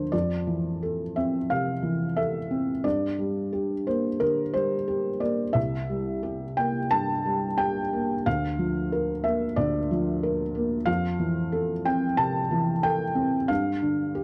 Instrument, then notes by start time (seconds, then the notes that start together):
felt piano
Already playing: D2 D3 F3 A#3 F4 A#4 C5
0.12 F2 D5
0.47 E3
0.83 A4
1.16 C4 E5
1.50 C3 F5
1.83 E3
2.17 A4 E5
2.51 C4
2.84 G2 D5
3.19 G3
3.53 G4
3.87 A#3 C5
4.20 D3 A#4
4.54 G3 C5
4.88 G4
5.20 A#3 D5
5.53 C2 E5
5.90 G3
6.23 G4
6.57 A#3 G5
6.91 G2 A5
7.26 G3
7.58 G4 G5
7.93 A#3
8.26 D2 F5
8.59 F3
8.92 A#4
9.24 A#3 E5
9.56 D2 D5
9.91 F3
10.23 A#4
10.55 A#3
10.86 F2 F5
11.19 E3
11.52 A4
11.85 C4 G5
12.17 C3 A5
12.51 E3
12.83 A4 G5
13.15 C4
13.48 G2 F5
13.82 D3
14.15 G4